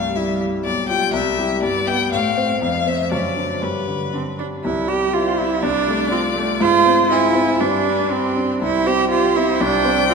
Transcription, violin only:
0.00 0.17 F5 medium
0.15 0.40 E5 medium
0.65 0.87 D5 medium
0.89 1.13 G5 loud
1.13 1.62 E5 medium
1.63 1.89 D5 medium
1.87 2.11 G5 loud
2.12 2.61 F5 medium
2.62 2.89 F5 medium
2.87 3.11 E5 medium
3.12 3.64 D5 medium
3.62 4.39 B4 medium
5.14 5.59 C5 medium
5.63 6.63 D5 medium
6.61 7.12 C5 medium
7.11 7.62 G#4 medium
7.61 8.36 B4 medium
8.62 9.08 C5 medium
9.12 9.62 C5 medium
9.61 10.14 G5 loud

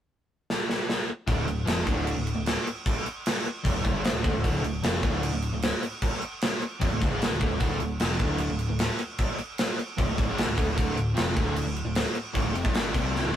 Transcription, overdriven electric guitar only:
1.27 1.44 D2 medium
1.27 1.45 A2 medium
1.27 1.47 D3 loud
1.45 1.62 D2 medium
1.45 1.62 A2 medium
1.66 1.84 F2 medium
1.66 1.85 C3 medium
1.66 1.85 F3 medium
1.84 2.14 D2 medium
1.84 2.14 A2 medium
1.84 2.15 D3 medium
2.15 2.31 D2 medium
2.15 2.32 A2 medium
2.34 2.51 D2 medium
2.34 2.51 A2 medium
3.64 3.73 F2 loud
3.64 3.74 C3 medium
3.74 3.82 D2 medium
3.74 3.82 A2 medium
3.83 3.91 D2 medium
3.83 3.92 A2 loud
3.92 4.12 G#2 medium
3.92 4.13 D#3 medium
3.92 4.13 G#3 medium
4.13 4.24 D2 medium
4.13 4.23 A2 medium
4.23 4.33 D3 medium
4.23 4.33 A3 loud
4.33 4.43 D2 medium
4.33 4.43 A2 medium
4.44 4.63 D2 loud
4.44 4.63 A2 medium
4.44 4.63 D3 loud
4.64 4.80 D2 medium
4.64 4.80 A2 medium
4.83 5.02 F2 loud
4.83 5.02 C3 loud
4.83 5.03 F3 loud
5.02 5.31 D2 medium
5.02 5.32 A2 medium
5.02 5.32 D3 medium
5.33 5.49 D2 medium
5.33 5.49 A2 medium
5.53 5.69 D2 medium
5.53 5.69 A2 medium
6.80 6.90 F2 medium
6.80 6.90 C3 loud
6.91 7.00 D2 medium
6.91 7.00 A2 medium
7.01 7.10 D2 medium
7.01 7.10 A2 medium
7.10 7.29 G#2 medium
7.10 7.29 D#3 medium
7.10 7.30 G#3 loud
7.29 7.40 D2 medium
7.29 7.39 A2 medium
7.39 7.49 D3 medium
7.39 7.50 A3 medium
7.49 7.58 D2 medium
7.49 7.59 A2 medium
7.60 7.79 D2 medium
7.60 7.79 A2 medium
7.60 7.80 D3 loud
7.80 7.96 D2 medium
7.80 7.96 A2 medium
8.00 8.19 F2 medium
8.00 8.19 C3 loud
8.00 8.20 F3 loud
8.19 8.49 D2 medium
8.19 8.49 A2 medium
8.19 8.49 D3 loud
8.50 8.66 D2 medium
8.50 8.66 A2 medium
8.68 8.85 D2 medium
8.68 8.85 A2 medium
9.97 10.07 F2 loud
9.97 10.07 C3 loud
10.07 10.16 D2 medium
10.07 10.17 A2 medium
10.18 10.27 D2 medium
10.18 10.28 A2 medium
10.29 10.47 G#2 medium
10.29 10.48 D#3 medium
10.29 10.48 G#3 medium
10.48 10.58 D2 medium
10.48 10.55 A2 medium
10.56 10.66 D3 medium
10.56 10.67 A3 medium
10.67 10.74 D2 medium
10.67 10.74 A2 medium
10.75 10.94 D2 loud
10.75 10.95 A2 loud
10.75 10.96 D3 loud
10.95 11.12 D2 medium
10.95 11.12 A2 medium
11.15 11.34 F2 loud
11.15 11.35 C3 medium
11.15 11.35 F3 loud
11.34 11.64 D2 medium
11.34 11.64 A2 medium
11.34 11.65 D3 loud
11.65 11.82 D2 medium
11.65 11.82 A2 medium
11.85 12.02 D2 medium
11.85 12.02 A2 medium
12.34 12.42 A2 medium
12.34 12.43 E3 loud
12.43 12.52 D2 loud
12.43 12.53 A2 loud
12.53 12.63 F2 medium
12.53 12.64 C3 loud
12.64 12.73 A2 medium
12.64 12.74 E3 medium
12.73 12.92 G2 medium
12.73 12.93 D3 loud
12.73 12.92 G3 loud
12.93 13.22 C3 medium
12.93 13.22 G3 medium
12.93 13.23 C4 medium
13.23 13.32 D2 medium
13.23 13.32 A2 medium
13.32 13.36 F2 medium
13.32 13.36 C3 medium
13.32 13.36 F3 medium

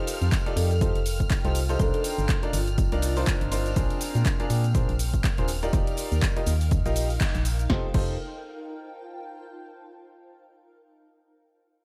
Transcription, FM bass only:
0.22 0.30 F2 loud
0.57 0.92 F2 loud
0.95 1.28 F1 medium
1.45 1.77 C2 medium
1.80 1.92 C2 loud
2.18 2.27 G1 loud
2.53 2.89 G1 loud
2.92 3.25 C2 medium
3.42 3.74 G1 medium
3.76 3.88 A#1 loud
4.15 4.24 A#2 loud
4.50 4.86 A#2 loud
4.89 5.21 A#1 medium
5.38 5.71 D#1 medium
5.73 5.85 D#1 loud
6.12 6.21 D#2 loud
6.47 6.82 D#2 loud
6.86 7.18 A#1 medium
7.35 7.67 A#1 loud
7.94 8.17 F1 loud

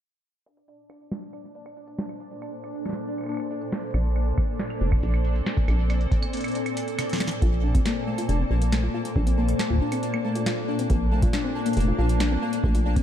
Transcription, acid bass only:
3.94 4.33 A#1 loud
4.81 4.97 F1 medium
5.03 5.42 A#1 medium
5.68 6.07 A#1 loud
7.42 7.81 A#1 loud
8.29 8.45 F1 medium
8.51 8.90 A#1 medium
9.16 9.55 A#1 loud
10.90 11.29 A#1 loud
11.77 11.93 F1 medium
11.99 12.38 A#1 medium
12.64 13.03 A#1 loud

